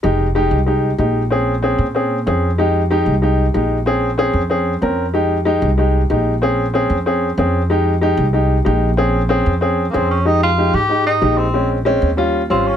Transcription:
<<
  \new Staff \with { instrumentName = "Grand piano" } { \time 4/4 \key f \minor \tempo 4 = 188 <aes ees' g'>8 r8 <aes ees' g'>8 r8 <aes ees' g'>8 r8 <aes ees' g'>8 r8 | <c' des' aes'>8 r8 <c' des' aes'>8 r8 <c' des' aes'>8 r8 <c' des' aes'>8 r8 | <aes ees' g'>8 r8 <aes ees' g'>8 r8 <aes ees' g'>8 r8 <aes ees' g'>8 r8 | <c' des' aes'>8 r8 <c' des' aes'>8 r8 <c' des' aes'>8 r8 <c' des' bes'>8 r8 |
<aes ees' g'>8 r8 <aes ees' g'>8 r8 <aes ees' g'>8 r8 <aes ees' g'>8 r8 | <c' des' aes'>8 r8 <c' des' aes'>8 r8 <c' des' aes'>8 r8 <c' des' aes'>8 r8 | <aes ees' g'>8 r8 <aes ees' g'>8 r8 <aes ees' g'>8 r8 <aes ees' g'>8 r8 | <c' des' aes'>8 r8 <c' des' aes'>8 r8 <c' des' aes'>8 r8 <c' des' aes'>8 r8 |
<aes ees' g'>8 r8 <aes ees' g'>8 r8 <aes ees' g'>8 r8 <aes ees' g'>8 r8 | <aes c' des'>8 r8 <aes c' des'>8 r8 <g des' f'>8 r8 <g des' f'>8 r8 | }
  \new Staff \with { instrumentName = "Tenor saxophone" } { \time 4/4 \key f \minor r1 | r1 | r1 | r1 |
r1 | r1 | r1 | r2 r8. r32 bes32 c'8 des'8 |
ees'8 f'4 g'4 ees'4 c'8~ | c'8 r2 r8 c'8 des'8 | }
  \new Staff \with { instrumentName = "Upright bass" } { \clef bass \time 4/4 \key f \minor f,,4. c,4. bes,,4~ | bes,,4. bes,4. f,4~ | f,4. c,4. bes,,4~ | bes,,4. f,4. f,4~ |
f,4. c,4. bes,,4~ | bes,,4. f,4. f,4~ | f,4. c,4. bes,,4~ | bes,,4. f,4. f,4~ |
f,4. aes,4. bes,,4~ | bes,,4. ees,4. aes,,4 | }
>>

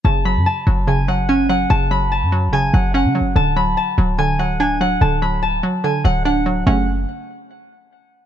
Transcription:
<<
  \new Staff \with { instrumentName = "Harp" } { \time 4/4 \key fis \minor \tempo 4 = 145 a''8 b''8 a''4 gis''8 fis''8 gis''8 fis''8 | a''8 b''8 a''4 gis''8 fis''8 fis''4 | a''8 b''8 a''4 gis''8 fis''8 gis''8 fis''8 | a''8 b''8 a''4 gis''8 fis''8 fis''4 |
fis''8 r2. r8 | }
  \new Staff \with { instrumentName = "Synth pluck" } { \clef bass \time 4/4 \key fis \minor cis8 fis4 fis8 cis8 fis8 cis'8 fis8 | cis8 fis4 fis8 cis8 fis8 cis'8 fis8 | d8 fis4 fis8 d8 fis8 d'8 fis8 | d8 fis4 fis8 d8 fis8 d'8 fis8 |
<cis fis a cis'>8 r2. r8 | }
  \new Staff \with { instrumentName = "808-style bass" } { \clef bass \time 4/4 \key fis \minor fis,,8. fis,16 r8 fis,,2~ fis,,8 | fis,,4~ fis,,16 fis,8~ fis,32 fis,,8~ fis,,32 fis,,8. cis16. fis,,16. | d,,4 r8 d,,2~ d,,8 | d,,4. r4 d,,4. |
fis,,4 r2. | }
>>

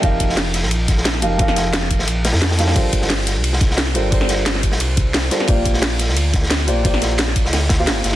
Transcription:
<<
  \new Staff \with { instrumentName = "Felt piano" } { \time 4/4 \key g \minor \tempo 4 = 176 <f ees' g' bes' f''>2.~ <f ees' g' bes' f''>8 <f ees' g' bes' f''>8 | <f ees' g' bes' f''>2.~ <f ees' g' bes' f''>8 <f ees' g' bes' f''>8 | <g d' f' a' bes' c''>2.~ <g d' f' a' bes' c''>8 <g d' f' a' bes' c''>8 | <g d' f' a' bes' c''>2.~ <g d' f' a' bes' c''>8 <g d' f' a' bes' c''>8 |
<bes f' g' c'' d''>2.~ <bes f' g' c'' d''>8 <bes f' g' c'' d''>8 | <bes f' g' c'' d''>2~ <bes f' g' c'' d''>8. <bes f' g' c'' f''>16 r4 | }
  \new Staff \with { instrumentName = "Sub bass" } { \clef bass \time 4/4 \key g \minor f,,4.~ f,,16 bes,,4.~ bes,,16 f,,8~ | f,,4.~ f,,16 bes,,4 f,4~ f,16 | g,,4.~ g,,16 c,4.~ c,16 g,,8~ | g,,4.~ g,,16 c,4.~ c,16 r8 |
bes,,4.~ bes,,16 d,4.~ d,16 bes,,8~ | bes,,4.~ bes,,16 d,4~ d,16 g,,8 g,,8 | }
  \new DrumStaff \with { instrumentName = "Drums" } \drummode { \time 4/4 <hh bd cymr>8 <hh bd cymr>16 sn16 <hh hho sn>8 <hh cymr sn>16 sn16 <hh cymr>8 <hh bd cymr sn>16 sn16 <hh cymr sn>16 sn16 <hh cymr>8 | <hh bd cymr>16 sn16 <hh cymr sn>8 <hh cymr sn>16 sn16 <hh bd cymr>16 sn16 <hh cymr>8 <hh hho sn>16 <hho sn>16 <hh hho sn>16 <hho sn>16 <hh hho sn>16 <hho sn>16 | <hh bd cymr>8 <hh bd cymr>16 sn16 <hh hho cymr sn>8 <hh cymr sn>8 <hh cymr>16 sn16 <hh bd cymr sn>16 sn16 <hh cymr sn>16 sn16 <hh cymr>8 | <hh bd cymr>16 sn16 <hh cymr sn>8 <hh cymr sn>16 sn16 <hh bd cymr>16 sn16 <hh cymr>8 <hh bd cymr>8 <hh cymr sn>16 sn16 <hh cymr sn>16 <cymr sn>16 |
<hh bd cymr>8 <hh bd cymr>16 sn16 <hh hho cymr sn>8 <hh cymr sn>16 sn16 <hh cymr>8 <hh bd cymr sn>16 sn16 <hh cymr sn>16 sn16 <hh cymr>8 | <hh bd cymr>16 sn16 <hh cymr sn>8 <hh cymr sn>16 sn16 <hh bd cymr>16 sn16 <hh hho cymr sn>8 <hh hho bd sn>8 <hh cymr sn>16 sn16 <hh cymr sn>8 | }
>>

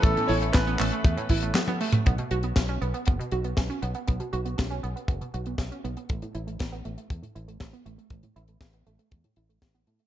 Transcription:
<<
  \new Staff \with { instrumentName = "Grand piano" } { \time 4/4 \key a \mixolydian \tempo 4 = 119 a'8 cis''8 b'2~ b'8 r8 | r1 | r1 | r1 |
r1 | }
  \new Staff \with { instrumentName = "String section" } { \time 4/4 \key a \mixolydian <e a b cis' a'>1 | r1 | r1 | r1 |
r1 | }
  \new Staff \with { instrumentName = "Synth arpeggio sound" } { \time 4/4 \key a \mixolydian a16 a,16 e'16 a16 b16 b16 a16 a16 a16 a,16 e'16 a16 b16 b16 a16 a16 | b16 b,16 fis'16 b16 cis'16 cis'16 b16 b16 b16 b,16 fis'16 b16 cis'16 cis'16 b16 b16 | b16 b,16 fis'16 b16 cis'16 cis'16 b16 b16 b16 b,16 fis'16 b16 cis'16 cis'16 b16 b16 | a16 a,16 e'16 a16 b16 b16 a16 a16 a16 a,16 e'16 a16 b16 b16 a16 a16 |
a16 a,16 e'16 a16 b16 b16 a16 a16 a16 a,16 e'16 a16 b16 b16 a16 a16 | }
  \new Staff \with { instrumentName = "Fingered electric bass" } { \clef bass \time 4/4 \key a \mixolydian a,,8 a,,8 a,,8 a,,8 e,8 a,,8 r4 | b,,8 b,,8 b,,8 b,,8 fis,,8 b,,8 b,,8 b,,8 | b,,8 b,,8 b,,8 b,,8 fis,,8 b,,8 b,,8 b,,8 | a,,8 a,,8 a,,8 a,,8 e,8 a,,8 a,,8 a,,8 |
a,,8 a,,8 a,,8 a,,8 e,8 a,,8 a,,8 a,8 | }
  \new DrumStaff \with { instrumentName = "Drums" } \drummode { \time 4/4 <hh bd>16 hh16 hho16 hh16 <hc hh bd sn>16 hh16 <hc hho>16 hh16 <hh bd>16 hh16 <hho bd>16 hh16 <hc hh sn tommh>16 <hh tommh>16 hho16 <hh toml>16 | <hh bd>16 hh16 hh16 hh16 <hh bd sn>16 hh16 hh16 hh16 <hh bd>16 hh16 hh16 hh16 <hh bd sn>16 hh16 hh16 hh16 | <hh bd>16 hh16 hh16 hh16 <hh bd sn>16 hh16 hh16 hh16 <hh bd>16 hh16 hh16 hh16 <hh bd sn>16 hh16 hh16 hh16 | <hh bd>16 hh16 hh16 hh16 <hh bd sn>16 hh16 hh16 hh16 <hh bd>16 hh16 hh16 hh16 <hh bd sn>16 hh16 hh16 hh16 |
<hh bd>16 hh16 hh16 hh16 <hh bd sn>16 hh16 hh16 hh16 <hh bd>16 hh16 hh16 hh16 <hh bd sn>16 hh16 hh16 hh16 | }
>>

